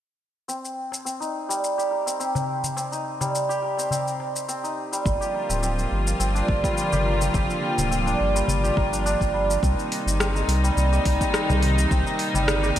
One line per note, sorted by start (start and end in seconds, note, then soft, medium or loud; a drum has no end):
0.48 1.05 C4 medium
0.48 shaker soft
0.65 shaker soft
0.92 darbuka ka medium
0.92 shaker medium
1.05 2.06 C4 medium
1.05 shaker soft
1.20 2.91 D#4 medium
1.20 shaker soft
1.49 3.20 G3 medium
1.49 darbuka ka soft
1.49 shaker medium
1.64 shaker medium
1.78 3.49 G4 medium
1.78 darbuka tek soft
1.78 shaker soft
1.91 3.62 A#4 medium
2.06 2.19 C4 medium
2.06 darbuka tek soft
2.06 shaker medium
2.20 2.76 C4 medium
2.20 shaker soft
2.35 darbuka ka medium
2.35 darbuka dum medium
2.35 shaker soft
2.64 darbuka dum medium
2.64 shaker medium
2.76 3.78 C4 medium
2.76 darbuka tek medium
2.76 shaker medium
2.92 4.63 D#4 medium
2.92 shaker soft
3.21 4.91 G3 medium
3.21 darbuka ka medium
3.21 darbuka dum medium
3.21 shaker medium
3.35 shaker medium
3.49 5.20 G4 medium
3.49 darbuka tek soft
3.49 shaker soft
3.63 5.34 A#4 medium
3.77 3.91 C4 medium
3.77 darbuka ka soft
3.77 shaker medium
3.91 4.48 C4 medium
3.91 darbuka dum medium
3.91 shaker medium
4.08 shaker soft
4.20 darbuka ka medium
4.36 shaker medium
4.48 5.49 C4 medium
4.48 shaker soft
4.64 6.41 D#4 medium
4.64 shaker soft
4.92 5.11 G3 medium
4.92 shaker medium
5.05 5.17 G1 medium
5.05 9.59 D3 medium
5.05 9.59 F3 medium
5.05 9.59 G3 medium
5.05 9.59 A#3 medium
5.05 9.59 F4 medium
5.05 kick loud
5.05 shaker medium
5.21 6.92 G4 medium
5.21 shaker soft
5.34 7.05 A#4 medium
5.49 5.86 D1 medium
5.49 5.62 C4 medium
5.49 darbuka ka medium
5.49 shaker medium
5.63 6.19 C4 medium
5.63 shaker medium
5.79 shaker soft
5.92 6.14 G1 medium
6.07 darbuka ka soft
6.07 shaker medium
6.20 6.42 G1 loud
6.20 7.20 C4 medium
6.20 shaker medium
6.35 8.06 D4 medium
6.35 darbuka tek soft
6.35 shaker soft
6.48 6.60 G1 medium
6.48 kick loud
6.63 8.34 G3 medium
6.63 kick medium
6.63 darbuka tek soft
6.63 shaker medium
6.78 shaker soft
6.92 7.29 G1 medium
6.92 8.63 G4 medium
6.92 darbuka ka soft
6.92 darbuka dum medium
6.92 shaker soft
7.06 8.76 A#4 medium
7.21 7.33 C4 medium
7.21 darbuka dum medium
7.21 shaker medium
7.34 7.46 G1 medium
7.34 7.90 C4 medium
7.34 kick loud
7.34 darbuka tek medium
7.34 shaker medium
7.50 shaker soft
7.78 8.15 D1 medium
7.78 darbuka ka medium
7.78 darbuka dum medium
7.78 shaker medium
7.91 9.62 C4 medium
7.91 shaker medium
8.06 8.92 D4 medium
8.06 darbuka tek soft
8.06 shaker soft
8.20 8.43 G1 medium
8.35 9.33 G3 medium
8.35 darbuka ka soft
8.35 shaker medium
8.48 8.71 G1 medium
8.48 darbuka dum medium
8.48 shaker medium
8.63 10.92 G4 medium
8.63 shaker soft
8.76 9.15 G1 medium
8.76 11.05 A#4 medium
8.76 kick loud
8.76 darbuka ka soft
8.92 9.05 D4 medium
8.92 shaker medium
9.06 10.41 D4 loud
9.06 shaker soft
9.21 9.58 G1 medium
9.21 kick medium
9.21 shaker soft
9.34 9.68 G3 medium
9.50 shaker medium
9.62 9.75 C2 medium
9.62 12.79 C3 medium
9.62 12.79 D#3 medium
9.62 12.79 G3 medium
9.62 12.79 A#3 medium
9.62 10.19 C4 medium
9.62 12.79 D#4 medium
9.62 kick loud
9.62 shaker medium
9.77 darbuka ka soft
9.77 shaker soft
9.92 open hi-hat medium
10.06 10.43 G1 medium
10.06 shaker medium
10.19 11.20 C4 medium
10.19 cross-stick loud
10.19 shaker medium
10.35 12.06 D#4 medium
10.35 shaker soft
10.48 10.71 C2 medium
10.48 open hi-hat medium
10.63 12.33 G3 medium
10.63 darbuka ka soft
10.63 shaker medium
10.77 10.99 C2 loud
10.77 shaker medium
10.92 12.63 G4 medium
10.92 darbuka tek soft
10.92 shaker soft
11.05 11.17 C2 medium
11.05 12.76 A#4 medium
11.05 kick medium
11.05 open hi-hat medium
11.20 11.33 C4 medium
11.20 kick loud
11.20 darbuka tek soft
11.20 shaker medium
11.33 11.91 C4 medium
11.33 cross-stick medium
11.33 shaker soft
11.49 11.86 C2 medium
11.49 darbuka ka medium
11.49 darbuka dum loud
11.49 shaker soft
11.63 open hi-hat medium
11.78 shaker medium
11.91 12.03 C2 medium
11.91 12.79 C4 medium
11.91 kick loud
11.91 darbuka tek medium
11.91 shaker medium
12.06 12.79 D#4 medium
12.06 darbuka ka soft
12.06 shaker soft
12.19 open hi-hat medium
12.34 12.72 G1 medium
12.34 12.79 G3 medium
12.34 darbuka dum medium
12.34 shaker medium
12.48 cross-stick loud
12.48 shaker medium
12.63 12.79 G4 loud
12.63 darbuka tek soft
12.63 shaker soft
12.76 open hi-hat medium